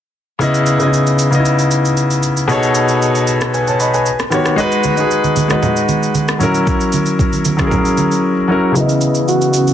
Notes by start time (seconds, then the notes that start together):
0.39 C#3 B3 E4, shaker
0.43 D#5
0.54 shaker
0.66 shaker
0.79 C#3 B3 D#4 D#5, shaker
0.88 E4
0.93 shaker
1.07 shaker
1.19 shaker
1.31 C#3 B3 D#4, shaker
1.35 D#5
1.40 E4
1.45 shaker
1.59 shaker
1.71 shaker
1.85 shaker
1.97 shaker
2.11 shaker
2.23 shaker
2.37 shaker
2.48 B2 B3 D#4 G#4 A4 C#5, shaker
2.63 shaker
2.75 shaker
2.88 shaker
3.02 shaker
3.15 shaker
3.27 shaker
3.41 cross-stick, shaker
3.54 B4 G#5, shaker
3.67 C#5 A5, shaker
3.80 D#5 B5, shaker
3.94 B4 G#5, shaker
4.06 shaker
4.19 cross-stick, shaker
4.30 D#3 B3 F#4 G4, cross-stick, shaker
4.34 C#5
4.46 cross-stick, shaker
4.56 G#3 D#4 F#4, shaker
4.60 B4
4.72 shaker
4.83 high conga, shaker
4.96 G#3 D#4 F#4, shaker
5.00 G#4
5.11 shaker
5.24 high conga, shaker
5.36 high conga, shaker
5.48 G#3 D#4 F#4, cross-stick, high conga, shaker
5.52 B4
5.62 low conga, shaker
5.76 shaker
5.89 high conga, shaker
6.03 shaker
6.15 high conga, shaker
6.28 cross-stick, shaker
6.39 F#3 C#4 E4 A#4, high conga, low conga, shaker
6.54 shaker
6.67 kick, shaker
6.80 shaker
6.92 high conga, shaker
7.06 shaker
7.19 kick, shaker
7.33 high conga, shaker
7.45 high conga, shaker
7.57 F#3 C#4 E4 G#4, kick, cross-stick, high conga, shaker
7.67 A#4
7.71 kick, low conga, shaker
7.85 shaker
7.97 high conga, shaker
8.11 shaker
8.48 F#3 C#4 E4 A#4
8.72 C#3 B3, shaker
8.76 C#3 E3 B3 E4 D#5
8.89 shaker
9.01 shaker
9.15 shaker
9.28 F#4, shaker
9.41 shaker
9.53 shaker
9.67 shaker